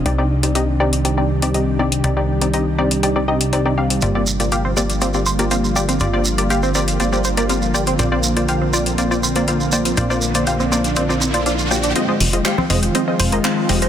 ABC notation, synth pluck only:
X:1
M:4/4
L:1/16
Q:1/4=121
K:Cm
V:1 name="Synth pluck"
[CEGd] [CEGd]2 [CEGd] [CEGe] z [CEGd] z [CEGd] [CEGd] z [CEGd] [CEGe]2 [CEGd] z | [CEGd] [CEGd]2 [CEGd] [CEGe] z [CEGd] z [CEGd] [CEGd] [CEGe] z [CEGd] [CEGd] [CEGf]2 | [B,FGd] [B,FGd]2 [B,FGd] [B,FGf] z [B,FGd] z [B,FGd] [B,FGd] z [B,FGd] [B,FGf]2 [B,FGd] z | [B,FGd] [B,FGd]2 [B,FGd] [B,FGf] z [B,FGd] z [B,FGd] [B,FGd] z [B,FGd] [B,FGf]2 [B,FGd] z |
[B,Fcd] [B,Fcd]2 [B,Fcd] [B,Fcf] z [B,Fcd] z [B,Fcd] [B,Fcd] z [B,Fcd] [B,Fcf]2 [B,Fcd] z | [B,Fcd] [B,Fcd]2 [B,Fcd] [B,Fcf] z [B,Fcd] z [B,Fcd] [B,Fcd] z [B,Fcd] [B,Fcf]2 [B,Fcd] z | [A,Fce] [A,Fce]2 [A,Fce] [A,Fcf] z [A,Fce] z [A,Fce] [A,Fce] z [A,Fce] [A,Fcf]2 [A,Fce] z |]